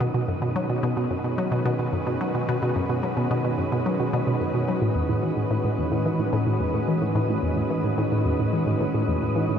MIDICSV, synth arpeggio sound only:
0, 0, Header, 1, 2, 480
1, 0, Start_track
1, 0, Tempo, 550459
1, 363, Time_signature, 4, 2, 24, 8
1, 8361, End_track
2, 0, Start_track
2, 0, Title_t, "Synth arpeggio sound"
2, 0, Program_c, 0, 84
2, 4, Note_on_c, 0, 47, 99
2, 48, Note_off_c, 0, 47, 0
2, 123, Note_on_c, 0, 47, 76
2, 197, Note_off_c, 0, 47, 0
2, 245, Note_on_c, 0, 42, 76
2, 289, Note_off_c, 0, 42, 0
2, 364, Note_on_c, 0, 47, 81
2, 475, Note_off_c, 0, 47, 0
2, 486, Note_on_c, 0, 54, 79
2, 559, Note_off_c, 0, 54, 0
2, 604, Note_on_c, 0, 47, 76
2, 678, Note_off_c, 0, 47, 0
2, 725, Note_on_c, 0, 47, 99
2, 769, Note_off_c, 0, 47, 0
2, 844, Note_on_c, 0, 47, 80
2, 918, Note_off_c, 0, 47, 0
2, 963, Note_on_c, 0, 42, 74
2, 1007, Note_off_c, 0, 42, 0
2, 1083, Note_on_c, 0, 47, 73
2, 1195, Note_off_c, 0, 47, 0
2, 1204, Note_on_c, 0, 54, 78
2, 1278, Note_off_c, 0, 54, 0
2, 1321, Note_on_c, 0, 47, 84
2, 1396, Note_off_c, 0, 47, 0
2, 1442, Note_on_c, 0, 47, 98
2, 1487, Note_off_c, 0, 47, 0
2, 1560, Note_on_c, 0, 47, 75
2, 1636, Note_off_c, 0, 47, 0
2, 1681, Note_on_c, 0, 42, 78
2, 1726, Note_off_c, 0, 42, 0
2, 1802, Note_on_c, 0, 47, 80
2, 1914, Note_off_c, 0, 47, 0
2, 1925, Note_on_c, 0, 54, 72
2, 1998, Note_off_c, 0, 54, 0
2, 2046, Note_on_c, 0, 47, 76
2, 2119, Note_off_c, 0, 47, 0
2, 2168, Note_on_c, 0, 47, 99
2, 2210, Note_off_c, 0, 47, 0
2, 2288, Note_on_c, 0, 47, 81
2, 2359, Note_off_c, 0, 47, 0
2, 2405, Note_on_c, 0, 42, 78
2, 2449, Note_off_c, 0, 42, 0
2, 2524, Note_on_c, 0, 47, 74
2, 2635, Note_off_c, 0, 47, 0
2, 2643, Note_on_c, 0, 54, 73
2, 2717, Note_off_c, 0, 54, 0
2, 2763, Note_on_c, 0, 47, 79
2, 2837, Note_off_c, 0, 47, 0
2, 2884, Note_on_c, 0, 47, 95
2, 2928, Note_off_c, 0, 47, 0
2, 3004, Note_on_c, 0, 47, 74
2, 3078, Note_off_c, 0, 47, 0
2, 3123, Note_on_c, 0, 42, 75
2, 3168, Note_off_c, 0, 42, 0
2, 3244, Note_on_c, 0, 47, 84
2, 3355, Note_off_c, 0, 47, 0
2, 3366, Note_on_c, 0, 54, 73
2, 3438, Note_off_c, 0, 54, 0
2, 3486, Note_on_c, 0, 47, 78
2, 3559, Note_off_c, 0, 47, 0
2, 3605, Note_on_c, 0, 47, 105
2, 3648, Note_off_c, 0, 47, 0
2, 3723, Note_on_c, 0, 47, 79
2, 3797, Note_off_c, 0, 47, 0
2, 3843, Note_on_c, 0, 42, 74
2, 3888, Note_off_c, 0, 42, 0
2, 3964, Note_on_c, 0, 47, 75
2, 4075, Note_off_c, 0, 47, 0
2, 4084, Note_on_c, 0, 54, 76
2, 4158, Note_off_c, 0, 54, 0
2, 4201, Note_on_c, 0, 45, 82
2, 4276, Note_off_c, 0, 45, 0
2, 4318, Note_on_c, 0, 40, 78
2, 4365, Note_off_c, 0, 40, 0
2, 4440, Note_on_c, 0, 45, 77
2, 4553, Note_off_c, 0, 45, 0
2, 4560, Note_on_c, 0, 52, 73
2, 4636, Note_off_c, 0, 52, 0
2, 4680, Note_on_c, 0, 45, 80
2, 4756, Note_off_c, 0, 45, 0
2, 4801, Note_on_c, 0, 45, 96
2, 4847, Note_off_c, 0, 45, 0
2, 4922, Note_on_c, 0, 45, 73
2, 4997, Note_off_c, 0, 45, 0
2, 5042, Note_on_c, 0, 40, 75
2, 5087, Note_off_c, 0, 40, 0
2, 5160, Note_on_c, 0, 45, 85
2, 5273, Note_off_c, 0, 45, 0
2, 5280, Note_on_c, 0, 52, 73
2, 5356, Note_off_c, 0, 52, 0
2, 5400, Note_on_c, 0, 45, 76
2, 5476, Note_off_c, 0, 45, 0
2, 5518, Note_on_c, 0, 45, 104
2, 5565, Note_off_c, 0, 45, 0
2, 5639, Note_on_c, 0, 45, 79
2, 5715, Note_off_c, 0, 45, 0
2, 5757, Note_on_c, 0, 40, 74
2, 5805, Note_off_c, 0, 40, 0
2, 5877, Note_on_c, 0, 45, 75
2, 5991, Note_off_c, 0, 45, 0
2, 5999, Note_on_c, 0, 52, 73
2, 6075, Note_off_c, 0, 52, 0
2, 6120, Note_on_c, 0, 45, 81
2, 6196, Note_off_c, 0, 45, 0
2, 6236, Note_on_c, 0, 45, 104
2, 6284, Note_off_c, 0, 45, 0
2, 6359, Note_on_c, 0, 45, 77
2, 6435, Note_off_c, 0, 45, 0
2, 6477, Note_on_c, 0, 40, 78
2, 6524, Note_off_c, 0, 40, 0
2, 6598, Note_on_c, 0, 45, 78
2, 6712, Note_off_c, 0, 45, 0
2, 6718, Note_on_c, 0, 52, 75
2, 6795, Note_off_c, 0, 52, 0
2, 6836, Note_on_c, 0, 45, 75
2, 6914, Note_off_c, 0, 45, 0
2, 6958, Note_on_c, 0, 45, 104
2, 7005, Note_off_c, 0, 45, 0
2, 7080, Note_on_c, 0, 45, 84
2, 7156, Note_off_c, 0, 45, 0
2, 7198, Note_on_c, 0, 40, 76
2, 7245, Note_off_c, 0, 40, 0
2, 7319, Note_on_c, 0, 45, 77
2, 7432, Note_off_c, 0, 45, 0
2, 7438, Note_on_c, 0, 52, 76
2, 7515, Note_off_c, 0, 52, 0
2, 7558, Note_on_c, 0, 45, 83
2, 7635, Note_off_c, 0, 45, 0
2, 7678, Note_on_c, 0, 45, 99
2, 7725, Note_off_c, 0, 45, 0
2, 7799, Note_on_c, 0, 45, 80
2, 7875, Note_off_c, 0, 45, 0
2, 7919, Note_on_c, 0, 40, 77
2, 7965, Note_off_c, 0, 40, 0
2, 8041, Note_on_c, 0, 45, 80
2, 8153, Note_off_c, 0, 45, 0
2, 8160, Note_on_c, 0, 52, 76
2, 8236, Note_off_c, 0, 52, 0
2, 8280, Note_on_c, 0, 45, 75
2, 8356, Note_off_c, 0, 45, 0
2, 8361, End_track
0, 0, End_of_file